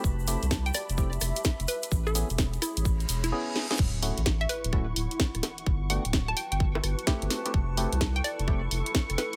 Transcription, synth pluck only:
X:1
M:4/4
L:1/16
Q:"Swing 16ths" 1/4=128
K:D
V:1 name="Synth pluck"
z4 z g d z6 z B2- | B A z4 E4- E E z4 | z4 z e B z8 z | z2 g z2 a g g z8 |
z4 z g d z6 z B2 |]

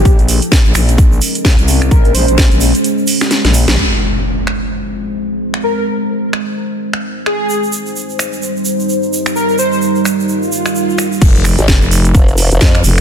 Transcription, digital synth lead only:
X:1
M:4/4
L:1/16
Q:"Swing 16ths" 1/4=129
K:Fm
V:1 name="Digital synth lead"
z16 | B B c c z12 | z16 | B B z12 A2 |
z16 | B B c c z12 | z16 |]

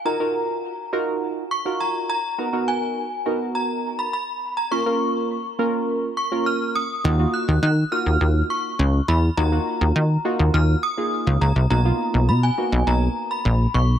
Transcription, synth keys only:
X:1
M:4/4
L:1/16
Q:1/4=103
K:Ebm
V:1 name="Synth keys"
[EFGB] [EFGB]3 z2 [EFGB]3 z2 [EFGB]3 z2 | [=B,^D^F^A] [B,DFA]3 z2 [B,DFA]6 z4 | [B,DFB] [B,DFB]3 z2 [B,DFB]3 z2 [B,DFB]3 z2 | [B,EFG] [B,EFG]3 z2 [B,EFG]6 z4 |
[B,EFG] [B,EFG]3 z2 [B,EFG]3 z2 [B,EFA]3 z2 | [^A,=B,^D^F] [A,B,D=F]3 z2 [A,B,D^F]6 z4 |]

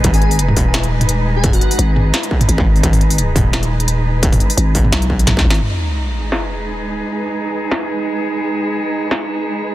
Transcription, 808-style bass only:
X:1
M:4/4
L:1/8
Q:"Swing 16ths" 1/4=172
K:G#m
V:1 name="808-style bass" clef=bass
G,,,3 D,,,4- D,,,- | D,,, z G,,,2 z2 G,,,2 | G,,,3 D,,,4- D,,,- | D,,, z G,,,2 B,,,3 G,,, |
z8 | z8 | z8 |]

